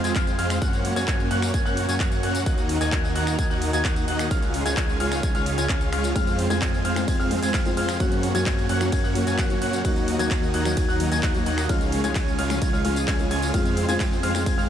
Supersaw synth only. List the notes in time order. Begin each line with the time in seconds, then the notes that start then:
0.04 G#3 C4 F4 C5 G#5
0.38 G#3 C4 F4 C5 F5
0.62 A#3 C#4 F#4 C#5
0.96 A#3 C#4 F#4 C#5 G#5
1.08 C#4 F#4 C#5
1.31 A#3 C#4 F#4 C#5 F#5
1.54 A#3 C#4 C#5 G#5
1.66 A#3 C#4 F#4 C#5 F#5
1.89 A#3 C#4 F#4 C#5 G#5
2.00 A#3 C#4 F#4 C#5
2.23 A#3 C#4 F#4 C#5 F#5
2.46 A#3 D#4 F#4 D#5 F#5
2.81 A#3 D#4 F#4 D#5 G#5
2.92 A#3 D#4 F#4 D#5 G#5
3.16 A#3 D#4 F#4 D#5 F#5
3.50 A#3 D#4 F#4 D#5 F#5
3.73 A#3 D#4 F#4 D#5 G#5
4.08 A#3 D#4 F#4 D#5 F#5
4.31 G#3 C#4 C#5
4.66 G#3 C#4 F4 C#5 G#5
4.77 G#3 C#4 F4 C#5
5.00 G#3 C#4 F4 C#5 F5
5.23 G#3 C#4 C#5
5.35 G#3 C#4 F4 C#5 F5
5.58 G#3 C#4 F4 C#5 G#5
5.69 G#3 C#4 C#5
5.92 G#3 C#4 F4 C#5 F5
6.16 G#3 C4 F4 C5
6.50 G#3 C4 F4 C5 G#5
6.62 G#3 C4 G#5
6.85 G#3 C4 F4 C5 F5
7.08 G#3 C4 F4 C5
7.19 G#3 C4 F4 C5 F5
7.42 G#3 C4 F4 C5 G#5
7.54 C4
7.77 G#3 C4 F4 C5 F5
8.00 A#3 C#4 F#4 C#5
8.35 A#3 C#4 F#4 C#5 G#5
8.46 A#3 C#4 F#4
8.69 A#3 C#4 F#4 C#5 F#5
8.93 A#3 C#4 F#4 C#5
9.04 A#3 C#4 F#4 C#5 F#5
9.27 A#3 C#4 F#4 C#5 G#5
9.39 C#4 F#4 C#5 F#5
9.62 A#3 C#4 F#4 C#5 F#5
9.85 A#3 D#4 F#4 D#5
10.19 A#3 D#4 F#4 D#5 G#5
10.31 A#3 D#4 F#4 D#5 G#5
10.54 A#3 D#4 F#4 D#5 F#5
10.77 A#3 D#4 F#4 D#5
10.88 A#3 D#4 F#4 D#5 F#5
11.12 A#3 D#4 F#4 D#5 G#5
11.46 A#3 D#4 F#4 D#5 F#5
11.69 G#3 C#4 F4 C#5 F5
12.04 G#3 C#4 F4 C#5 G#5
12.15 C#4 C#5
12.39 G#3 C#4 F4 C#5 F5
12.62 G#3 C#4 C#5 G#5
12.73 G#3 C#4 F4 C#5 F5
12.85 G#3 C#4 F4 C#5 F5
13.08 G#3 C#4 F4 C#5 G#5
13.31 G#3 C#4 F4 C#5 G#5
13.54 G#3 C4 F4 C5 F5
13.88 G#3 C4 F4 C5 G#5
14.00 G#3 C4 F4 C5 G#5
14.23 G#3 C4 F4 C5 F5
14.46 G#3 C4 F4 C5 G#5
14.58 G#3 C4 F4 C5 F5